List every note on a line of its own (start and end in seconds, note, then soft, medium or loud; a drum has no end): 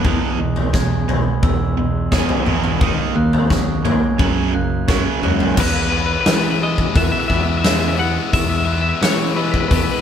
0.04 1.77 E2 medium
0.04 0.37 E2 loud
0.04 0.19 E2 loud
0.04 0.37 B2 loud
0.04 0.38 E3 loud
0.04 0.74 D#6 medium
0.04 kick loud
0.04 floor tom medium
0.39 1.27 E2 medium
0.39 0.71 E2 medium
0.39 0.71 B2 medium
0.39 1.76 G#3 medium
0.56 floor tom medium
0.73 1.05 E2 medium
0.73 1.05 B2 loud
0.73 2.11 G#4 medium
0.73 1.43 G#6 medium
0.73 kick loud
0.73 snare medium
1.08 1.39 E2 medium
1.08 1.40 B2 medium
1.08 2.45 B3 medium
1.08 floor tom medium
1.43 1.74 E2 medium
1.43 2.30 E2 medium
1.43 1.74 B2 medium
1.43 2.12 E6 medium
1.43 kick loud
1.43 floor tom medium
1.77 2.08 E2 medium
1.77 2.09 B2 medium
1.77 2.81 G#3 medium
2.12 2.44 E2 medium
2.12 2.45 B2 medium
2.12 2.45 E3 loud
2.12 2.81 G#4 medium
2.12 2.80 D#6 medium
2.12 kick loud
2.12 snare medium
2.29 floor tom medium
2.46 2.79 E2 medium
2.46 2.76 E2 loud
2.46 2.79 B2 medium
2.46 2.79 E3 loud
2.46 2.81 B3 medium
2.46 mid tom medium
2.64 mid tom medium
2.81 2.95 D#2 loud
2.81 4.19 D#3 medium
2.81 3.14 D#3 loud
2.81 3.14 A#3 loud
2.81 3.14 D#4 loud
2.81 3.16 D#6 medium
2.81 kick loud
2.81 floor tom medium
3.15 4.03 D#2 medium
3.15 3.47 D#3 medium
3.15 4.19 A#3 medium
3.15 3.47 A#3 medium
3.15 3.85 F#6 medium
3.33 floor tom medium
3.49 3.81 D#3 medium
3.49 3.82 A#3 medium
3.49 4.19 F#4 medium
3.49 kick loud
3.49 snare medium
3.49 mid tom medium
3.84 4.16 D#3 medium
3.84 4.16 A#3 medium
3.84 4.19 C#4 medium
3.84 4.54 G#6 medium
3.84 floor tom medium
3.84 mid tom medium
4.18 4.51 F#2 loud
4.18 5.57 F#2 medium
4.18 5.07 F#2 medium
4.18 4.52 C#3 loud
4.18 4.52 F#3 loud
4.18 kick loud
4.18 floor tom medium
4.54 4.85 F#2 medium
4.54 4.85 C#3 medium
4.54 5.57 A#3 medium
4.54 5.22 F#6 medium
4.88 5.21 F#2 medium
4.88 5.21 C#3 loud
4.88 5.21 F#3 loud
4.88 5.57 F#4 medium
4.88 kick loud
4.88 snare medium
5.23 5.52 F#2 loud
5.23 5.55 F#2 medium
5.23 5.55 C#3 loud
5.23 5.56 F#3 loud
5.23 5.57 C#4 medium
5.23 5.57 F#6 medium
5.23 mid tom medium
5.40 floor tom medium
5.57 6.16 E2 loud
5.57 7.30 E2 medium
5.57 5.92 E3 medium
5.57 5.92 G#3 loud
5.57 5.92 B3 loud
5.57 5.93 E4 loud
5.57 5.67 B4 medium
5.57 6.27 F#6 medium
5.57 kick loud
5.57 crash loud
5.67 5.75 B4 medium
5.76 5.82 B4 medium
5.82 5.90 B4 medium
5.90 6.26 E3 medium
5.90 6.26 G#3 medium
5.90 6.27 B3 medium
5.90 6.27 E4 medium
5.90 5.97 B4 medium
5.97 6.05 B4 medium
6.06 6.12 B4 medium
6.13 6.20 B4 medium
6.21 6.28 B4 medium
6.26 6.84 E3 medium
6.26 6.60 E3 medium
6.26 6.95 E3 medium
6.26 6.61 G#3 medium
6.26 6.61 B3 medium
6.26 6.62 E4 loud
6.26 6.96 E7 medium
6.26 snare loud
6.26 open hi-hat medium
6.35 6.42 B4 medium
6.43 6.50 B4 medium
6.50 6.58 B4 medium
6.61 6.93 E3 medium
6.61 6.94 G#3 medium
6.61 7.63 G#3 medium
6.61 6.95 B3 medium
6.61 6.95 E4 loud
6.61 6.97 D#5 medium
6.78 kick medium
6.95 7.10 E2 loud
6.95 7.28 E3 medium
6.95 7.97 E3 medium
6.95 7.29 G#3 loud
6.95 7.30 B3 loud
6.95 7.29 E4 loud
6.95 7.03 E5 loud
6.95 7.64 F#6 medium
6.95 kick loud
6.95 open hi-hat medium
7.04 7.11 E5 medium
7.12 7.19 E5 medium
7.19 7.27 E5 medium
7.28 8.17 E2 loud
7.28 7.62 E3 medium
7.28 7.62 G#3 medium
7.28 10.01 B3 medium
7.28 7.63 B3 medium
7.28 7.63 E4 medium
7.28 7.34 E5 medium
7.28 kick medium
7.34 7.42 E5 medium
7.43 7.49 E5 medium
7.49 7.57 E5 medium
7.57 7.65 E5 medium
7.63 7.96 E3 medium
7.63 7.97 G#3 medium
7.63 9.35 G#3 medium
7.63 7.98 B3 loud
7.63 7.97 E4 medium
7.63 7.72 E5 medium
7.63 8.33 E6 medium
7.63 snare loud
7.63 open hi-hat medium
7.72 7.80 E5 medium
7.80 7.88 E5 medium
7.88 7.95 E5 medium
7.95 8.31 E3 medium
7.95 9.01 E3 medium
7.95 8.32 G#3 medium
7.95 8.32 B3 medium
7.95 8.32 E4 loud
7.95 7.99 E5 medium
7.95 8.33 F#5 loud
8.32 10.01 E2 medium
8.32 8.91 E2 loud
8.32 8.65 E3 loud
8.32 8.66 G#3 loud
8.32 8.67 B3 loud
8.32 8.67 E4 loud
8.32 8.41 E5 loud
8.32 8.68 E6 medium
8.32 kick loud
8.32 open hi-hat medium
8.41 8.49 E5 medium
8.50 8.57 E5 medium
8.57 8.65 E5 medium
8.65 9.00 E3 loud
8.65 9.00 G#3 medium
8.65 9.02 B3 loud
8.65 9.01 E4 loud
8.65 8.73 E5 loud
8.65 9.37 F#6 medium
8.73 8.81 E5 medium
8.81 8.89 E5 medium
8.89 8.96 E5 medium
8.97 9.02 E5 medium
9.01 9.34 E3 medium
9.01 9.60 E3 medium
9.01 9.69 E3 medium
9.01 9.35 G#3 medium
9.01 9.36 B3 medium
9.01 9.35 E4 loud
9.01 9.38 C#5 medium
9.01 snare loud
9.01 open hi-hat medium
9.35 9.69 E3 medium
9.35 9.70 G#3 medium
9.35 10.01 G#3 medium
9.35 9.70 B3 medium
9.35 9.70 E4 loud
9.35 9.43 B4 medium
9.35 10.01 E6 medium
9.44 9.51 B4 medium
9.51 9.59 B4 medium
9.51 kick medium
9.60 9.68 B4 medium
9.68 9.86 E2 medium
9.68 10.01 E3 loud
9.68 10.01 E3 medium
9.68 10.01 G#3 loud
9.68 10.01 B3 loud
9.68 10.01 E4 loud
9.68 9.75 B4 medium
9.68 kick loud
9.68 open hi-hat medium
9.76 9.83 B4 medium
9.83 9.91 B4 medium
9.91 9.99 B4 medium